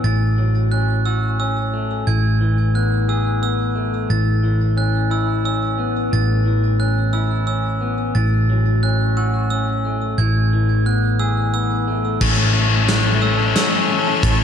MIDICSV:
0, 0, Header, 1, 7, 480
1, 0, Start_track
1, 0, Key_signature, 3, "major"
1, 0, Tempo, 675676
1, 28, Time_signature, 3, 2, 24, 8
1, 10257, End_track
2, 0, Start_track
2, 0, Title_t, "Glockenspiel"
2, 0, Program_c, 0, 9
2, 29, Note_on_c, 0, 93, 65
2, 508, Note_on_c, 0, 90, 62
2, 509, Note_off_c, 0, 93, 0
2, 749, Note_off_c, 0, 90, 0
2, 750, Note_on_c, 0, 88, 54
2, 984, Note_off_c, 0, 88, 0
2, 992, Note_on_c, 0, 88, 59
2, 1471, Note_off_c, 0, 88, 0
2, 1471, Note_on_c, 0, 92, 64
2, 1951, Note_off_c, 0, 92, 0
2, 1955, Note_on_c, 0, 90, 55
2, 2193, Note_off_c, 0, 90, 0
2, 2196, Note_on_c, 0, 88, 52
2, 2427, Note_off_c, 0, 88, 0
2, 2436, Note_on_c, 0, 88, 55
2, 2914, Note_off_c, 0, 88, 0
2, 2914, Note_on_c, 0, 93, 65
2, 3392, Note_on_c, 0, 90, 59
2, 3393, Note_off_c, 0, 93, 0
2, 3632, Note_off_c, 0, 90, 0
2, 3632, Note_on_c, 0, 88, 53
2, 3866, Note_off_c, 0, 88, 0
2, 3875, Note_on_c, 0, 88, 61
2, 4354, Note_off_c, 0, 88, 0
2, 4355, Note_on_c, 0, 93, 65
2, 4829, Note_on_c, 0, 90, 58
2, 4834, Note_off_c, 0, 93, 0
2, 5065, Note_on_c, 0, 88, 52
2, 5071, Note_off_c, 0, 90, 0
2, 5298, Note_off_c, 0, 88, 0
2, 5307, Note_on_c, 0, 88, 60
2, 5789, Note_on_c, 0, 93, 66
2, 5790, Note_off_c, 0, 88, 0
2, 6272, Note_off_c, 0, 93, 0
2, 6273, Note_on_c, 0, 90, 58
2, 6514, Note_off_c, 0, 90, 0
2, 6514, Note_on_c, 0, 88, 58
2, 6743, Note_off_c, 0, 88, 0
2, 6752, Note_on_c, 0, 88, 60
2, 7232, Note_on_c, 0, 92, 67
2, 7234, Note_off_c, 0, 88, 0
2, 7714, Note_off_c, 0, 92, 0
2, 7716, Note_on_c, 0, 90, 59
2, 7953, Note_on_c, 0, 88, 61
2, 7956, Note_off_c, 0, 90, 0
2, 8187, Note_off_c, 0, 88, 0
2, 8196, Note_on_c, 0, 88, 61
2, 8674, Note_on_c, 0, 93, 76
2, 8675, Note_off_c, 0, 88, 0
2, 9152, Note_on_c, 0, 90, 67
2, 9154, Note_off_c, 0, 93, 0
2, 9391, Note_on_c, 0, 88, 65
2, 9393, Note_off_c, 0, 90, 0
2, 9624, Note_off_c, 0, 88, 0
2, 9633, Note_on_c, 0, 88, 74
2, 10112, Note_on_c, 0, 93, 79
2, 10113, Note_off_c, 0, 88, 0
2, 10257, Note_off_c, 0, 93, 0
2, 10257, End_track
3, 0, Start_track
3, 0, Title_t, "Ambient pad"
3, 0, Program_c, 1, 92
3, 8671, Note_on_c, 1, 69, 67
3, 8674, Note_on_c, 1, 64, 72
3, 8674, Note_on_c, 1, 73, 63
3, 8675, Note_on_c, 1, 81, 79
3, 10257, Note_off_c, 1, 64, 0
3, 10257, Note_off_c, 1, 69, 0
3, 10257, Note_off_c, 1, 73, 0
3, 10257, Note_off_c, 1, 81, 0
3, 10257, End_track
4, 0, Start_track
4, 0, Title_t, "Clean electric guitar"
4, 0, Program_c, 2, 27
4, 29, Note_on_c, 2, 45, 53
4, 271, Note_on_c, 2, 54, 49
4, 512, Note_on_c, 2, 61, 53
4, 751, Note_on_c, 2, 66, 52
4, 984, Note_off_c, 2, 61, 0
4, 992, Note_on_c, 2, 61, 51
4, 1230, Note_off_c, 2, 45, 0
4, 1232, Note_on_c, 2, 57, 46
4, 1471, Note_off_c, 2, 54, 0
4, 1471, Note_off_c, 2, 57, 0
4, 1471, Note_off_c, 2, 61, 0
4, 1471, Note_off_c, 2, 66, 0
4, 1472, Note_on_c, 2, 45, 58
4, 1711, Note_on_c, 2, 52, 48
4, 1950, Note_on_c, 2, 59, 48
4, 2191, Note_on_c, 2, 68, 49
4, 2428, Note_off_c, 2, 59, 0
4, 2430, Note_on_c, 2, 59, 50
4, 2666, Note_on_c, 2, 57, 45
4, 2672, Note_off_c, 2, 45, 0
4, 2909, Note_off_c, 2, 57, 0
4, 2909, Note_on_c, 2, 45, 52
4, 2911, Note_off_c, 2, 68, 0
4, 2930, Note_off_c, 2, 59, 0
4, 3147, Note_off_c, 2, 52, 0
4, 3150, Note_on_c, 2, 52, 45
4, 3385, Note_on_c, 2, 61, 50
4, 3627, Note_on_c, 2, 64, 54
4, 3864, Note_off_c, 2, 61, 0
4, 3866, Note_on_c, 2, 61, 52
4, 4104, Note_on_c, 2, 59, 47
4, 4125, Note_off_c, 2, 45, 0
4, 4343, Note_on_c, 2, 45, 54
4, 4352, Note_off_c, 2, 52, 0
4, 4585, Note_on_c, 2, 52, 49
4, 4824, Note_off_c, 2, 61, 0
4, 4827, Note_on_c, 2, 61, 50
4, 4830, Note_off_c, 2, 64, 0
4, 5066, Note_on_c, 2, 64, 55
4, 5298, Note_off_c, 2, 61, 0
4, 5306, Note_on_c, 2, 61, 51
4, 5309, Note_off_c, 2, 59, 0
4, 5548, Note_on_c, 2, 59, 48
4, 5549, Note_off_c, 2, 45, 0
4, 5790, Note_off_c, 2, 52, 0
4, 5790, Note_off_c, 2, 61, 0
4, 5791, Note_off_c, 2, 59, 0
4, 5791, Note_off_c, 2, 64, 0
4, 5792, Note_on_c, 2, 45, 57
4, 6037, Note_on_c, 2, 54, 49
4, 6276, Note_on_c, 2, 61, 51
4, 6515, Note_on_c, 2, 66, 57
4, 6748, Note_off_c, 2, 61, 0
4, 6757, Note_on_c, 2, 61, 53
4, 6994, Note_off_c, 2, 45, 0
4, 7000, Note_on_c, 2, 57, 50
4, 7235, Note_off_c, 2, 66, 0
4, 7236, Note_off_c, 2, 54, 0
4, 7236, Note_off_c, 2, 61, 0
4, 7237, Note_off_c, 2, 57, 0
4, 7241, Note_on_c, 2, 45, 60
4, 7481, Note_on_c, 2, 52, 52
4, 7716, Note_on_c, 2, 59, 56
4, 7954, Note_on_c, 2, 68, 52
4, 8187, Note_off_c, 2, 59, 0
4, 8195, Note_on_c, 2, 59, 56
4, 8436, Note_on_c, 2, 57, 53
4, 8438, Note_off_c, 2, 45, 0
4, 8674, Note_off_c, 2, 68, 0
4, 8675, Note_off_c, 2, 57, 0
4, 8675, Note_off_c, 2, 59, 0
4, 8678, Note_off_c, 2, 52, 0
4, 8678, Note_on_c, 2, 45, 67
4, 8922, Note_on_c, 2, 57, 59
4, 9162, Note_on_c, 2, 52, 60
4, 9397, Note_off_c, 2, 57, 0
4, 9399, Note_on_c, 2, 57, 60
4, 9641, Note_on_c, 2, 61, 65
4, 9875, Note_on_c, 2, 69, 63
4, 10113, Note_off_c, 2, 45, 0
4, 10116, Note_on_c, 2, 45, 72
4, 10257, Note_off_c, 2, 45, 0
4, 10257, Note_off_c, 2, 52, 0
4, 10257, Note_off_c, 2, 57, 0
4, 10257, Note_off_c, 2, 61, 0
4, 10257, Note_off_c, 2, 69, 0
4, 10257, End_track
5, 0, Start_track
5, 0, Title_t, "Distorted electric guitar"
5, 0, Program_c, 3, 30
5, 8680, Note_on_c, 3, 57, 67
5, 8688, Note_on_c, 3, 61, 69
5, 8731, Note_off_c, 3, 57, 0
5, 8733, Note_on_c, 3, 57, 44
5, 8741, Note_off_c, 3, 61, 0
5, 8744, Note_on_c, 3, 61, 53
5, 8784, Note_off_c, 3, 57, 0
5, 8787, Note_on_c, 3, 57, 51
5, 8799, Note_off_c, 3, 61, 0
5, 8804, Note_on_c, 3, 61, 63
5, 8842, Note_off_c, 3, 57, 0
5, 8843, Note_off_c, 3, 61, 0
5, 8846, Note_on_c, 3, 61, 52
5, 8848, Note_on_c, 3, 57, 45
5, 8895, Note_off_c, 3, 57, 0
5, 8898, Note_on_c, 3, 57, 57
5, 8901, Note_off_c, 3, 61, 0
5, 8904, Note_on_c, 3, 61, 62
5, 8950, Note_off_c, 3, 57, 0
5, 8953, Note_on_c, 3, 57, 51
5, 8959, Note_off_c, 3, 61, 0
5, 8967, Note_on_c, 3, 61, 58
5, 9004, Note_off_c, 3, 57, 0
5, 9007, Note_on_c, 3, 57, 53
5, 9015, Note_off_c, 3, 61, 0
5, 9018, Note_on_c, 3, 61, 63
5, 9061, Note_off_c, 3, 61, 0
5, 9062, Note_off_c, 3, 57, 0
5, 9064, Note_on_c, 3, 61, 57
5, 9068, Note_on_c, 3, 57, 50
5, 9116, Note_off_c, 3, 57, 0
5, 9119, Note_off_c, 3, 61, 0
5, 9119, Note_on_c, 3, 57, 56
5, 9127, Note_on_c, 3, 61, 71
5, 9171, Note_off_c, 3, 57, 0
5, 9174, Note_on_c, 3, 57, 51
5, 9179, Note_off_c, 3, 61, 0
5, 9182, Note_on_c, 3, 61, 59
5, 9224, Note_off_c, 3, 57, 0
5, 9227, Note_on_c, 3, 57, 62
5, 9230, Note_off_c, 3, 61, 0
5, 9233, Note_on_c, 3, 61, 68
5, 9279, Note_off_c, 3, 57, 0
5, 9282, Note_on_c, 3, 57, 48
5, 9287, Note_off_c, 3, 61, 0
5, 9293, Note_on_c, 3, 61, 55
5, 9335, Note_off_c, 3, 57, 0
5, 9338, Note_on_c, 3, 57, 58
5, 9340, Note_off_c, 3, 61, 0
5, 9343, Note_on_c, 3, 61, 64
5, 9388, Note_off_c, 3, 57, 0
5, 9391, Note_on_c, 3, 57, 53
5, 9394, Note_off_c, 3, 61, 0
5, 9396, Note_on_c, 3, 61, 58
5, 9446, Note_off_c, 3, 57, 0
5, 9449, Note_on_c, 3, 57, 62
5, 9451, Note_off_c, 3, 61, 0
5, 9455, Note_on_c, 3, 61, 72
5, 9495, Note_off_c, 3, 57, 0
5, 9497, Note_on_c, 3, 57, 52
5, 9506, Note_off_c, 3, 61, 0
5, 9509, Note_on_c, 3, 61, 58
5, 9551, Note_off_c, 3, 57, 0
5, 9553, Note_on_c, 3, 57, 60
5, 9562, Note_off_c, 3, 61, 0
5, 9565, Note_on_c, 3, 61, 64
5, 9605, Note_off_c, 3, 57, 0
5, 9608, Note_on_c, 3, 57, 51
5, 9617, Note_off_c, 3, 61, 0
5, 9620, Note_on_c, 3, 61, 62
5, 9654, Note_off_c, 3, 57, 0
5, 9657, Note_on_c, 3, 57, 55
5, 9666, Note_off_c, 3, 61, 0
5, 9669, Note_on_c, 3, 61, 66
5, 9712, Note_off_c, 3, 57, 0
5, 9721, Note_on_c, 3, 57, 50
5, 9723, Note_off_c, 3, 61, 0
5, 9729, Note_on_c, 3, 61, 61
5, 9770, Note_off_c, 3, 57, 0
5, 9773, Note_on_c, 3, 57, 53
5, 9778, Note_off_c, 3, 61, 0
5, 9781, Note_on_c, 3, 61, 62
5, 9827, Note_off_c, 3, 57, 0
5, 9833, Note_on_c, 3, 57, 49
5, 9835, Note_off_c, 3, 61, 0
5, 9846, Note_on_c, 3, 61, 56
5, 9885, Note_off_c, 3, 61, 0
5, 9888, Note_off_c, 3, 57, 0
5, 9888, Note_on_c, 3, 61, 61
5, 9894, Note_on_c, 3, 57, 52
5, 9934, Note_off_c, 3, 57, 0
5, 9937, Note_on_c, 3, 57, 44
5, 9942, Note_off_c, 3, 61, 0
5, 9944, Note_on_c, 3, 61, 54
5, 9992, Note_off_c, 3, 57, 0
5, 9996, Note_on_c, 3, 57, 50
5, 9999, Note_off_c, 3, 61, 0
5, 10003, Note_on_c, 3, 61, 56
5, 10043, Note_off_c, 3, 57, 0
5, 10046, Note_on_c, 3, 57, 47
5, 10054, Note_off_c, 3, 61, 0
5, 10057, Note_on_c, 3, 61, 53
5, 10100, Note_off_c, 3, 57, 0
5, 10111, Note_off_c, 3, 61, 0
5, 10114, Note_on_c, 3, 57, 66
5, 10119, Note_on_c, 3, 61, 76
5, 10164, Note_off_c, 3, 57, 0
5, 10167, Note_on_c, 3, 57, 42
5, 10172, Note_off_c, 3, 61, 0
5, 10175, Note_on_c, 3, 61, 57
5, 10217, Note_off_c, 3, 57, 0
5, 10220, Note_on_c, 3, 57, 56
5, 10224, Note_off_c, 3, 61, 0
5, 10227, Note_on_c, 3, 61, 65
5, 10257, Note_off_c, 3, 57, 0
5, 10257, Note_off_c, 3, 61, 0
5, 10257, End_track
6, 0, Start_track
6, 0, Title_t, "Picked electric bass"
6, 0, Program_c, 4, 34
6, 29, Note_on_c, 4, 33, 53
6, 1442, Note_off_c, 4, 33, 0
6, 1473, Note_on_c, 4, 33, 57
6, 2884, Note_off_c, 4, 33, 0
6, 2912, Note_on_c, 4, 33, 57
6, 4325, Note_off_c, 4, 33, 0
6, 4354, Note_on_c, 4, 33, 58
6, 5766, Note_off_c, 4, 33, 0
6, 5791, Note_on_c, 4, 33, 60
6, 7205, Note_off_c, 4, 33, 0
6, 7234, Note_on_c, 4, 33, 59
6, 8646, Note_off_c, 4, 33, 0
6, 8674, Note_on_c, 4, 33, 78
6, 9605, Note_off_c, 4, 33, 0
6, 10112, Note_on_c, 4, 33, 86
6, 10257, Note_off_c, 4, 33, 0
6, 10257, End_track
7, 0, Start_track
7, 0, Title_t, "Drums"
7, 8673, Note_on_c, 9, 49, 99
7, 8675, Note_on_c, 9, 36, 88
7, 8745, Note_off_c, 9, 49, 0
7, 8746, Note_off_c, 9, 36, 0
7, 9154, Note_on_c, 9, 38, 73
7, 9154, Note_on_c, 9, 42, 65
7, 9225, Note_off_c, 9, 38, 0
7, 9225, Note_off_c, 9, 42, 0
7, 9632, Note_on_c, 9, 38, 79
7, 9632, Note_on_c, 9, 42, 67
7, 9703, Note_off_c, 9, 38, 0
7, 9703, Note_off_c, 9, 42, 0
7, 10110, Note_on_c, 9, 36, 90
7, 10111, Note_on_c, 9, 42, 63
7, 10181, Note_off_c, 9, 36, 0
7, 10183, Note_off_c, 9, 42, 0
7, 10257, End_track
0, 0, End_of_file